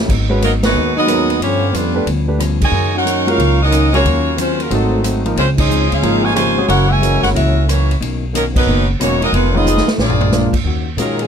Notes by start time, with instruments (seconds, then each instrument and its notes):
0.08 upright bass G#1, hollow-body jazz guitar G#2 F#3 B3 D#4, kick, crash
0.29 grand piano G#3 C#4 F#4 B4
0.41 hollow-body jazz guitar G#2 F#3 B3 D#4, saxophone section F#3 B3 D#4 A#4, trombone section A#3, hi-hat pedal, ride
0.63 trombone section D#3 F#3 B3, saxophone section G#3 D#4 F#4 B4, snare, ride
0.74 upright bass D#2, hollow-body jazz guitar G#2 F#3 B3 D#4
0.97 trombone section F#3 B3 D#4, saxophone section B3 F#4 G#4 D#5
1.06 hollow-body jazz guitar G#2 F#3 B3 D#4, grand piano G#3 C#4 F#4 A#4, cross-stick, hi-hat pedal, ride
1.30 ride
1.40 hollow-body jazz guitar G2 F3 B3 C#4, upright bass G2, trombone section D3 F3 C#4, saxophone section B3 F4 G4 C#5, ride
1.73 upright bass F2, hollow-body jazz guitar G2 F3 B3 C#4, trombone section D3 F3 B3, saxophone section G3 D4 F4 B4, hi-hat pedal, ride
1.95 grand piano A3 D4 G4 B4
2.06 upright bass D2, hollow-body jazz guitar G2 F3 B3 C#4, ride
2.28 grand piano A3 D4 G4 B4
2.38 hollow-body jazz guitar G2 F3 B3 C#4, cross-stick, hi-hat pedal, ride
2.61 trombone section C#3 D#3 G#3, saxophone section F#4 C#5 D#5 G#5, kick, crash
2.71 upright bass F#2, hollow-body jazz guitar F#2 D#3 A#3 C#4
2.96 trombone section C#4 D#4 F#4, saxophone section D#4 A#4 C#5 F#5
3.05 hollow-body jazz guitar F#2 D#3 A#3 C#4, hi-hat pedal, ride
3.27 grand piano G#3 C#4 F#4 A#4, trombone section A#3 C#4 F4, saxophone section A#4 C#5 F5, ride
3.31 saxophone section D#4
3.38 upright bass C#2, hollow-body jazz guitar F#2 D#3 A#3 C#4, ride
3.62 trombone section D#3 A#3 D#4, saxophone section C#4 F#4 A#4 D#5
3.71 hollow-body jazz guitar F#2 D#3 A#3 C#4, cross-stick, hi-hat pedal, ride
3.93 trombone section F#3 A#3 C#4, grand piano G#3 C#4 F#4 A#4, saxophone section A#3 F4 F#4 C#5, ride
4.04 upright bass D#2, hollow-body jazz guitar D#3 F#3 C#4 F4, ride
4.37 hollow-body jazz guitar D#3 F#3 C#4 F4, saxophone section G#3 C#4 F4 C5, trombone section C4, hi-hat pedal, ride
4.59 trombone section C#3 F#3 A#3, saxophone section F#3 C#4 F4 A#4, ride
4.70 upright bass G#1, hollow-body jazz guitar G#2 F#3 A3 C4, trombone section D#3 F#3 A3, saxophone section F#3 C4 D#4 A4, grand piano A3 C4 D#4 F#4, ride
5.04 hollow-body jazz guitar G#2 F#3 A3 C4, cross-stick, hi-hat pedal, ride
5.25 grand piano F3 A#3 D#4 A#4, ride
5.36 upright bass C#2, hollow-body jazz guitar C#3 F3 G#3 C4, trombone section F3 G#3 C4, saxophone section G#3 C#4 F4 C5, ride
5.56 trombone section G#3 C#4 D#4, saxophone section C#4 G#4 C5 D#5, kick, crash
5.69 hollow-body jazz guitar C#3 F3 G#3 C4, hi-hat pedal
5.89 upright bass D2, trombone section G#3 C#4 F4, saxophone section C#4 G#4 C5 F5, ride
6.02 upright bass G#1, hollow-body jazz guitar C#3 F3 G#3 C4, grand piano F3 A#3 D#4 G#4, ride
6.23 trombone section C3 F3 G#3, saxophone section F4 C5 C#5 G#5
6.33 trombone section C3 F3 G#3, hollow-body jazz guitar C#3 F3, saxophone section F4 C5 C#5 G#5, cross-stick, hi-hat pedal, ride
6.37 hollow-body jazz guitar G#3 C4
6.58 grand piano G#3 C#4 F#4 G#4
6.67 upright bass F#1, hollow-body jazz guitar F#2 E3 A#3 C#4, trombone section A#3 C#4 F#4, saxophone section E4 A#4 C#5 F#5, ride
6.89 trombone section C#3 E3 G#3, saxophone section F#4 C#5 E5 G#5
7.01 hollow-body jazz guitar F#2 E3 A#3 C#4, grand piano G#3 C#4 F#4 A#4, hi-hat pedal, ride
7.21 upright bass G1, trombone section A#3 C#4 F#4, saxophone section E4 A#4 C#5 F#5, snare, ride
7.33 upright bass C#2, hollow-body jazz guitar F#2 E3 A#3, trombone section A#3 C#4 E4, saxophone section C#4 F#4 A#4 E5, ride
7.38 hollow-body jazz guitar C#4
7.67 hollow-body jazz guitar F#2 E3 A#3 C#4, trombone section E3 A#3 C#4, saxophone section A#3 E4 F#4 C#5, cross-stick, hi-hat pedal, ride
7.91 ride
8.01 upright bass B1, hollow-body jazz guitar B2 D#3 A#3 C#4, ride
8.33 hollow-body jazz guitar B2 D#3 A#3 C#4, trombone section D#3 F#3 A#3, saxophone section F#3 C#4 D#4 A#4, hi-hat pedal, ride
8.54 trombone section D#3 F#3 B3, saxophone section F#3 C#4 D#4 B4, kick, crash
8.67 upright bass F#1, hollow-body jazz guitar B2 D#3 A#3 C#4
9.00 upright bass E1, hollow-body jazz guitar B2 D#3 A#3 C#4, trombone section F#3 A#3 C#4, saxophone section A#3 D#4 F#4 C#5, cross-stick, hi-hat pedal, ride
9.21 trombone section F#3 A#3 D#4, saxophone section C#4 F#4 A#4 D#5, ride
9.32 upright bass F1, trombone section D#3 G#3 B3, hollow-body jazz guitar F3 B3 D#4 G#4, saxophone section G#3 D#4 F4 B4, ride
9.54 grand piano D#3 G#3 C#4 F4, trombone section G#3 B3 D#4, saxophone section B3 F4 G#4 D#5
9.66 hollow-body jazz guitar F3 B3 D#4 G#4, hi-hat pedal
9.77 snare
9.88 snare
9.98 upright bass A#1, hollow-body jazz guitar A#2 F3 G#3 D4, trombone section F3 G#3 D4, saxophone section A#3 F4 G#4 D5, snare
10.10 floor tom
10.21 floor tom
10.31 hollow-body jazz guitar A#2 F3 G#3 D4, grand piano G#3 A#3 D4 F4, snare, hi-hat pedal
10.53 muted upright bass stroke, kick, crash
10.64 upright bass D#2, hollow-body jazz guitar D#3 A#3 C#4 F#4
10.97 upright bass A#2, hollow-body jazz guitar D#3 A#3 C#4 F#4, grand piano D#3 G#3 C#4 F4, saxophone section F#3 C#4 D#4 A#4, hi-hat pedal, ride
11.19 saxophone section F#3 C#4 D#4 G#4, ride